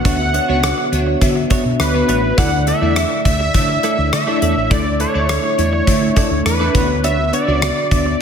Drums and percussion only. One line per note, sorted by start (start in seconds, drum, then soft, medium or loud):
0.05 kick loud
0.05 closed hi-hat medium
0.34 closed hi-hat medium
0.63 cross-stick loud
0.63 closed hi-hat medium
0.93 closed hi-hat medium
1.21 kick medium
1.21 closed hi-hat medium
1.50 kick medium
1.50 closed hi-hat medium
1.80 cross-stick medium
1.80 closed hi-hat medium
2.09 closed hi-hat medium
2.38 kick loud
2.38 closed hi-hat medium
2.67 closed hi-hat medium
2.96 cross-stick loud
2.96 closed hi-hat medium
3.25 kick medium
3.25 closed hi-hat medium
3.54 kick medium
3.54 closed hi-hat medium
3.83 closed hi-hat medium
4.13 cross-stick loud
4.13 closed hi-hat medium
4.42 closed hi-hat medium
4.71 kick loud
4.71 closed hi-hat medium
5.00 closed hi-hat medium
5.29 cross-stick loud
5.29 closed hi-hat medium
5.59 closed hi-hat medium
5.87 kick medium
5.87 closed hi-hat medium
6.16 kick medium
6.16 closed hi-hat medium
6.46 cross-stick medium
6.46 closed hi-hat medium
6.75 kick loud
6.75 closed hi-hat medium
7.04 closed hi-hat medium
7.33 closed hi-hat medium
7.62 cross-stick loud
7.62 closed hi-hat medium
7.91 kick medium
7.91 closed hi-hat medium